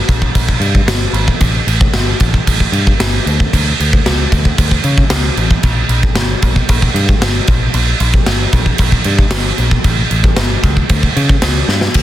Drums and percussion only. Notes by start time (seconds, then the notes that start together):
0.09 kick, crash
0.22 kick
0.35 kick, crash
0.49 kick
0.61 crash
0.75 kick
0.88 snare, crash
1.14 crash
1.28 kick
1.41 kick, crash
1.68 crash
1.81 kick
1.94 snare, crash
2.20 kick, crash
2.34 kick
2.47 kick, crash
2.60 kick
2.73 crash
2.87 kick
3.00 snare, crash
3.27 crash
3.40 kick
3.53 kick, crash
3.80 crash
3.93 kick
4.06 snare, crash
4.32 kick, crash
4.45 kick
4.58 kick, crash
4.71 kick
4.84 crash
4.98 kick
5.10 snare, crash
5.37 crash
5.51 kick
5.63 kick, crash
5.89 crash
6.03 kick
6.15 snare, crash
6.42 kick, crash
6.56 kick
6.69 kick, crash
6.82 kick
6.96 crash
7.09 kick
7.22 snare, crash
7.47 kick, crash
7.74 crash
8.00 crash
8.14 kick
8.26 snare, crash
8.53 kick, crash
8.66 kick
8.78 kick, crash
8.92 kick
9.04 crash
9.19 kick
9.31 snare, crash
9.58 crash
9.71 kick
9.84 kick, crash
10.11 crash
10.24 kick
10.36 snare, crash
10.63 kick, crash
10.77 kick
10.89 kick, crash
11.03 kick
11.17 crash
11.29 kick
11.42 snare, crash
11.69 snare
11.81 snare
11.94 kick, crash, china